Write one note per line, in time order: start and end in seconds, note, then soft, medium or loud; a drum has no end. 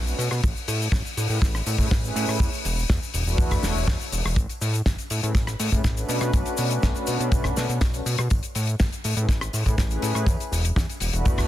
0.00 0.14 B1 medium
0.06 0.14 A3 medium
0.06 0.14 C#4 medium
0.06 0.14 D4 medium
0.06 0.14 F#4 medium
0.06 0.14 B4 medium
0.06 tambourine soft
0.06 shaker soft
0.18 0.29 B2 loud
0.18 open hi-hat loud
0.18 tambourine medium
0.18 shaker medium
0.31 0.41 B2 medium
0.31 cross-stick medium
0.31 tambourine soft
0.31 shaker soft
0.44 0.54 A1 medium
0.44 kick loud
0.44 tambourine medium
0.44 shaker medium
0.56 tambourine soft
0.56 shaker soft
0.68 0.88 A2 medium
0.68 open hi-hat loud
0.68 tambourine medium
0.68 shaker medium
0.82 tambourine soft
0.82 shaker soft
0.92 1.03 A1 medium
0.92 kick loud
0.92 snare loud
0.92 tambourine medium
0.92 shaker medium
1.05 tambourine soft
1.05 shaker soft
1.17 1.28 A2 medium
1.17 open hi-hat loud
1.17 tambourine medium
1.17 shaker medium
1.29 1.40 A2 medium
1.29 1.37 A3 medium
1.29 1.37 C#4 medium
1.29 1.37 E4 medium
1.29 1.37 G#4 medium
1.29 1.37 B4 medium
1.29 tambourine soft
1.29 shaker soft
1.42 1.62 A1 medium
1.42 kick loud
1.42 snare medium
1.42 tambourine medium
1.42 shaker medium
1.55 cross-stick medium
1.55 shaker soft
1.66 1.77 A2 medium
1.66 open hi-hat loud
1.66 tambourine loud
1.66 shaker medium
1.78 1.89 A2 medium
1.78 1.86 A3 medium
1.78 1.86 C#4 medium
1.78 1.86 E4 medium
1.78 1.86 G#4 medium
1.78 1.87 B4 medium
1.78 kick medium
1.78 tambourine soft
1.78 shaker soft
1.91 2.11 A1 medium
1.91 kick loud
1.91 snare loud
1.91 tambourine soft
1.91 shaker medium
2.04 2.39 A3 medium
2.04 2.39 C#4 medium
2.04 2.39 E4 medium
2.04 2.39 G#4 medium
2.04 2.39 B4 medium
2.04 tambourine soft
2.04 shaker soft
2.16 2.26 A2 loud
2.16 open hi-hat loud
2.16 tambourine medium
2.16 shaker medium
2.28 2.38 A2 medium
2.28 cross-stick medium
2.28 tambourine soft
2.28 shaker soft
2.40 2.50 E2 loud
2.40 kick loud
2.40 tambourine medium
2.40 shaker medium
2.53 tambourine soft
2.53 shaker soft
2.65 2.85 E1 medium
2.65 open hi-hat medium
2.65 tambourine medium
2.65 shaker medium
2.78 tambourine soft
2.78 shaker soft
2.90 3.00 E2 medium
2.90 kick loud
2.90 snare loud
2.90 tambourine medium
2.90 shaker medium
3.02 tambourine soft
3.02 shaker soft
3.14 3.24 E1 medium
3.14 open hi-hat loud
3.14 tambourine medium
3.14 shaker medium
3.26 3.36 E1 medium
3.26 3.60 A3 medium
3.26 3.60 D4 medium
3.26 3.61 E4 medium
3.26 3.61 F#4 medium
3.26 3.61 B4 loud
3.26 tambourine soft
3.26 shaker soft
3.38 3.59 E2 medium
3.38 kick loud
3.38 tambourine medium
3.38 shaker medium
3.51 kick medium
3.51 cross-stick medium
3.51 open hi-hat medium
3.51 shaker soft
3.63 3.73 E1 loud
3.63 3.75 A3 loud
3.63 3.75 D4 medium
3.63 3.75 E4 medium
3.63 3.75 F#4 medium
3.63 3.75 C#5 loud
3.63 snare medium
3.63 open hi-hat loud
3.63 tambourine medium
3.63 shaker medium
3.75 3.85 E1 medium
3.75 tambourine soft
3.75 shaker soft
3.87 3.98 E2 medium
3.87 kick loud
3.87 snare loud
3.87 tambourine soft
3.87 shaker soft
4.00 tambourine soft
4.00 shaker soft
4.12 4.23 E1 loud
4.12 open hi-hat loud
4.12 tambourine medium
4.12 shaker medium
4.25 4.35 E1 loud
4.25 cross-stick medium
4.25 tambourine soft
4.25 shaker soft
4.36 4.47 A1 medium
4.36 kick loud
4.36 closed hi-hat medium
4.36 tambourine soft
4.36 shaker medium
4.49 closed hi-hat soft
4.49 tambourine soft
4.49 shaker soft
4.61 4.82 A2 medium
4.61 open hi-hat medium
4.61 tambourine medium
4.61 shaker medium
4.74 closed hi-hat medium
4.74 tambourine soft
4.74 shaker medium
4.86 4.96 A1 medium
4.86 kick loud
4.86 snare loud
4.86 closed hi-hat medium
4.86 tambourine soft
4.86 shaker medium
4.98 closed hi-hat soft
4.98 tambourine soft
4.98 shaker soft
5.10 5.21 A2 medium
5.10 open hi-hat loud
5.10 tambourine medium
5.10 shaker medium
5.22 5.33 A2 medium
5.22 5.30 A3 medium
5.22 5.30 C#4 medium
5.22 5.30 E4 medium
5.22 5.30 G#4 medium
5.22 5.31 B4 medium
5.22 closed hi-hat medium
5.22 tambourine soft
5.22 shaker soft
5.34 5.55 A1 medium
5.34 kick loud
5.34 snare medium
5.34 closed hi-hat medium
5.34 tambourine medium
5.34 shaker medium
5.47 cross-stick medium
5.47 closed hi-hat soft
5.47 shaker soft
5.60 5.70 A2 medium
5.60 open hi-hat loud
5.60 tambourine medium
5.60 shaker medium
5.72 5.82 A2 medium
5.72 5.80 A3 medium
5.72 5.80 C#4 medium
5.72 5.80 E4 medium
5.72 5.80 G#4 medium
5.72 5.80 B4 medium
5.72 kick medium
5.72 closed hi-hat medium
5.72 tambourine soft
5.72 shaker soft
5.84 6.05 A1 medium
5.84 kick loud
5.84 snare loud
5.84 closed hi-hat medium
5.84 tambourine medium
5.84 shaker medium
5.96 7.17 A3 medium
5.96 7.17 C#4 medium
5.96 7.17 D4 medium
5.96 7.17 F#4 medium
5.96 7.18 B4 medium
5.96 closed hi-hat soft
5.96 tambourine soft
5.96 shaker soft
6.09 6.19 B2 loud
6.09 open hi-hat medium
6.09 tambourine medium
6.09 shaker medium
6.21 6.32 B2 medium
6.21 cross-stick medium
6.21 closed hi-hat medium
6.21 tambourine soft
6.21 shaker soft
6.33 6.44 B1 medium
6.33 kick loud
6.33 closed hi-hat medium
6.33 tambourine soft
6.33 shaker medium
6.45 closed hi-hat soft
6.45 tambourine soft
6.45 shaker soft
6.57 6.79 B2 medium
6.57 open hi-hat loud
6.57 tambourine medium
6.57 shaker medium
6.71 closed hi-hat medium
6.71 tambourine soft
6.71 shaker soft
6.82 6.93 B1 medium
6.82 kick medium
6.82 snare loud
6.82 closed hi-hat medium
6.82 tambourine soft
6.82 shaker medium
6.94 closed hi-hat soft
6.94 tambourine soft
6.94 shaker soft
7.07 7.18 B2 medium
7.07 open hi-hat loud
7.07 tambourine medium
7.07 shaker medium
7.19 7.30 B2 medium
7.19 7.54 A3 medium
7.19 7.54 C#4 medium
7.19 7.54 D4 medium
7.19 7.54 F#4 medium
7.19 7.54 B4 loud
7.19 closed hi-hat medium
7.19 tambourine soft
7.19 shaker soft
7.32 7.52 B1 medium
7.32 kick loud
7.32 closed hi-hat medium
7.32 tambourine soft
7.32 shaker medium
7.44 kick medium
7.44 cross-stick medium
7.44 closed hi-hat soft
7.44 shaker soft
7.56 7.67 B2 medium
7.56 7.64 A3 loud
7.56 7.64 C#4 medium
7.56 7.64 D4 loud
7.56 7.64 F#4 medium
7.56 7.64 B4 loud
7.56 snare medium
7.56 open hi-hat medium
7.56 tambourine medium
7.56 shaker medium
7.69 7.79 B2 medium
7.69 closed hi-hat medium
7.69 tambourine soft
7.69 shaker soft
7.81 8.02 B1 medium
7.81 kick loud
7.81 snare loud
7.81 closed hi-hat medium
7.81 tambourine soft
7.81 shaker medium
7.93 8.01 A3 medium
7.93 8.01 C#4 medium
7.93 8.01 D4 medium
7.93 8.01 F#4 medium
7.93 8.01 B4 medium
7.93 closed hi-hat soft
7.93 tambourine soft
7.93 shaker soft
8.06 8.16 B2 loud
8.06 open hi-hat loud
8.06 tambourine medium
8.06 shaker medium
8.18 8.28 B2 medium
8.18 cross-stick medium
8.18 closed hi-hat medium
8.18 tambourine soft
8.18 shaker soft
8.30 8.41 A1 loud
8.30 kick loud
8.30 closed hi-hat medium
8.30 tambourine soft
8.30 shaker medium
8.43 closed hi-hat soft
8.43 tambourine soft
8.43 shaker soft
8.55 8.75 A2 medium
8.55 open hi-hat loud
8.55 tambourine medium
8.55 shaker medium
8.67 closed hi-hat medium
8.67 tambourine soft
8.67 shaker soft
8.80 8.90 A1 medium
8.80 kick loud
8.80 snare loud
8.80 closed hi-hat medium
8.80 tambourine medium
8.80 shaker medium
8.92 closed hi-hat soft
8.92 tambourine soft
8.92 shaker soft
9.04 9.15 A2 medium
9.04 open hi-hat loud
9.04 tambourine medium
9.04 shaker medium
9.16 9.27 A2 medium
9.16 9.24 A3 medium
9.16 9.24 C#4 medium
9.16 9.24 E4 medium
9.16 9.24 G#4 medium
9.16 9.24 B4 medium
9.16 closed hi-hat medium
9.16 tambourine soft
9.16 shaker medium
9.29 9.49 A1 medium
9.29 kick loud
9.29 snare medium
9.29 closed hi-hat medium
9.29 tambourine soft
9.29 shaker medium
9.41 cross-stick medium
9.41 closed hi-hat soft
9.41 shaker soft
9.53 9.64 A2 medium
9.53 open hi-hat medium
9.53 tambourine medium
9.53 shaker medium
9.66 9.76 A2 medium
9.66 9.73 A3 medium
9.66 9.73 C#4 medium
9.66 9.73 E4 medium
9.66 9.73 G#4 medium
9.66 9.74 B4 medium
9.66 kick medium
9.66 closed hi-hat medium
9.66 tambourine soft
9.66 shaker medium
9.78 9.98 A1 medium
9.78 kick loud
9.78 snare loud
9.78 closed hi-hat medium
9.78 tambourine soft
9.78 shaker medium
9.91 10.26 A3 medium
9.91 10.26 C#4 medium
9.91 10.26 E4 medium
9.91 10.26 G#4 medium
9.91 10.26 B4 medium
9.91 closed hi-hat soft
9.91 tambourine soft
9.91 shaker soft
10.02 10.13 A2 loud
10.02 open hi-hat medium
10.02 tambourine medium
10.02 shaker medium
10.15 10.25 A2 medium
10.15 cross-stick medium
10.15 closed hi-hat medium
10.15 tambourine soft
10.15 shaker soft
10.26 10.37 E2 loud
10.26 kick loud
10.26 closed hi-hat medium
10.26 tambourine medium
10.26 shaker medium
10.40 closed hi-hat soft
10.40 tambourine soft
10.40 shaker soft
10.52 10.72 E1 medium
10.52 open hi-hat loud
10.52 tambourine medium
10.52 shaker medium
10.65 closed hi-hat medium
10.65 shaker medium
10.76 10.87 E2 medium
10.76 kick loud
10.76 snare loud
10.76 closed hi-hat medium
10.76 tambourine soft
10.76 shaker medium
10.89 closed hi-hat soft
10.89 tambourine soft
10.89 shaker soft
11.00 11.11 E1 medium
11.00 open hi-hat loud
11.00 tambourine medium
11.00 shaker medium
11.13 11.23 E1 medium
11.13 11.47 A3 medium
11.13 11.47 D4 medium
11.13 11.47 E4 medium
11.13 11.48 F#4 medium
11.13 11.48 B4 loud
11.13 closed hi-hat medium
11.13 tambourine soft
11.13 shaker medium
11.25 11.46 E2 medium
11.25 kick loud
11.25 closed hi-hat medium
11.25 tambourine soft
11.25 shaker medium
11.38 kick medium
11.38 cross-stick medium
11.38 open hi-hat medium
11.38 tambourine soft
11.38 shaker soft